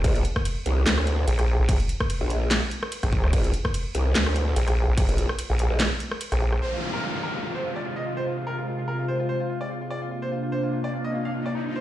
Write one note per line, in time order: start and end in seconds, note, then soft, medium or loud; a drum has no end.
0.04 0.23 A#1 loud
0.04 kick loud
0.04 closed hi-hat medium
0.04 crash medium
0.15 closed hi-hat soft
0.25 closed hi-hat medium
0.36 kick medium
0.36 cross-stick medium
0.45 closed hi-hat medium
0.45 crash soft
0.66 0.85 C2 loud
0.66 closed hi-hat medium
0.86 1.26 D2 loud
0.86 snare loud
0.86 clap medium
0.86 closed hi-hat medium
0.86 crash medium
0.98 cross-stick medium
1.07 closed hi-hat soft
1.28 1.58 A#1 loud
1.28 closed hi-hat medium
1.28 crash soft
1.39 cross-stick medium
1.39 closed hi-hat soft
1.59 1.78 A#1 loud
1.69 kick loud
1.69 closed hi-hat medium
1.69 crash medium
1.80 closed hi-hat soft
1.89 closed hi-hat medium
2.00 kick medium
2.00 cross-stick medium
2.10 closed hi-hat medium
2.10 crash medium
2.21 2.60 A#1 medium
2.30 closed hi-hat medium
2.51 snare loud
2.51 clap medium
2.51 closed hi-hat medium
2.51 crash medium
2.71 closed hi-hat medium
2.83 cross-stick medium
2.92 closed hi-hat medium
2.92 crash soft
3.03 3.22 A#1 loud
3.03 kick medium
3.03 cross-stick medium
3.03 closed hi-hat soft
3.13 kick loud
3.24 3.32 D2 medium
3.24 cross-stick medium
3.33 3.52 A#1 loud
3.33 kick loud
3.33 closed hi-hat medium
3.33 crash medium
3.44 closed hi-hat soft
3.54 closed hi-hat medium
3.65 kick medium
3.65 cross-stick medium
3.74 closed hi-hat medium
3.74 crash medium
3.95 4.14 C2 loud
3.95 closed hi-hat medium
4.15 4.55 D2 loud
4.15 snare loud
4.15 clap medium
4.15 closed hi-hat medium
4.15 crash medium
4.26 cross-stick medium
4.36 closed hi-hat medium
4.56 4.86 A#1 medium
4.56 closed hi-hat medium
4.56 crash soft
4.68 cross-stick medium
4.68 closed hi-hat soft
4.88 5.07 A#1 medium
4.97 kick loud
4.97 closed hi-hat medium
4.97 crash medium
5.09 5.27 A#1 loud
5.09 closed hi-hat soft
5.18 closed hi-hat medium
5.29 cross-stick medium
5.39 closed hi-hat medium
5.39 crash soft
5.50 5.69 A#1 loud
5.59 closed hi-hat medium
5.70 5.89 A#1 loud
5.80 snare loud
5.80 clap medium
5.80 closed hi-hat medium
5.80 crash medium
6.00 closed hi-hat medium
6.11 cross-stick medium
6.21 closed hi-hat medium
6.21 crash soft
6.32 6.60 A#1 loud
6.32 cross-stick medium
6.32 closed hi-hat soft
6.52 cross-stick medium
6.62 11.51 C3 medium
6.62 9.87 G#3 medium
6.62 9.87 F4 medium
6.62 6.69 C5 medium
6.62 downlifter medium
6.73 6.79 F4 medium
6.82 6.90 F4 medium
6.94 7.00 A#4 medium
7.03 7.10 F4 medium
7.14 7.20 F4 medium
7.23 7.31 A#4 medium
7.35 7.41 F4 medium
7.44 7.51 F4 medium
7.55 7.61 C5 medium
7.64 7.72 F4 medium
7.76 7.82 D5 medium
7.85 7.92 F4 medium
7.96 8.02 D#5 medium
8.06 8.13 F4 medium
8.17 8.23 C5 medium
8.26 8.34 F4 medium
8.38 8.44 F4 medium
8.47 8.54 A#4 medium
8.58 8.64 F4 medium
8.67 8.75 F4 medium
8.79 8.85 F4 medium
8.88 8.95 A#4 medium
8.99 9.05 F4 medium
9.08 9.16 C5 medium
9.20 9.26 F4 medium
9.29 9.36 C5 medium
9.40 9.46 F4 medium
9.50 9.57 F4 medium
9.61 9.67 D5 medium
9.70 9.77 F4 medium
9.81 9.87 F4 medium
9.90 11.53 A#3 medium
9.90 11.53 D4 medium
9.90 9.98 D5 medium
9.90 riser medium
10.02 10.08 F4 medium
10.11 10.18 F4 medium
10.22 10.28 C5 medium
10.32 10.39 F4 medium
10.43 10.49 F4 medium
10.52 10.59 C5 medium
10.63 10.69 F4 medium
10.73 10.80 F4 medium
10.84 10.90 D5 medium
10.93 11.01 F4 medium
11.05 11.11 D#5 medium
11.14 11.21 F4 medium
11.25 11.31 F5 medium
11.34 11.42 F4 medium
11.46 11.52 D5 medium
11.55 11.81 D#3 medium
11.55 11.81 G3 medium
11.55 11.62 D#4 medium
11.55 11.81 F4 medium
11.66 11.72 D#4 medium
11.76 11.81 C5 medium